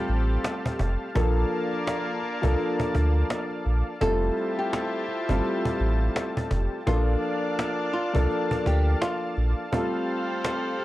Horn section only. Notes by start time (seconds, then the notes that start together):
Already playing: C4 G4 A4 C5
1.15 A#3 D4 F4 A#4
4.01 E4 A4 C5 E5
6.87 D4 A#4 D5
9.73 C4 G4 A4 C5